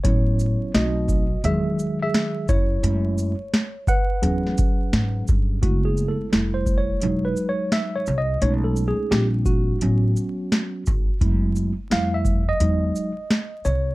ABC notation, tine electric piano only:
X:1
M:4/4
L:1/16
Q:"Swing 16ths" 1/4=86
K:E
V:1 name="Tine electric piano"
[Ec]4 [Fd]4 [Ge]3 [Ge]3 [Ec]2- | [Ec]6 [Bf]8 z2 | (3F2 G2 A2- (3A2 =c2 ^c2- (3c2 B2 c2 (3e2 c2 d2 | (3c2 A2 G2 =G2 F8- F2 |
z4 =f e2 d6- d c2 |]
V:2 name="Tine electric piano"
[F,B,C]4 [A,=CD]2 z2 [D,F,G,]6 z2 | [G,A,E]2 z6 [F,CG]8 | [G,A,B,E]4 [=G,A,E]4 [F,^G,D]6 z2 | [G,A,CD]4 [=G,^B,=D]4 [F,=B,C]6 z2 |
[G,A,B,E]2 z2 [=G,A,E]2 z2 [F,^G,D]2 z6 |]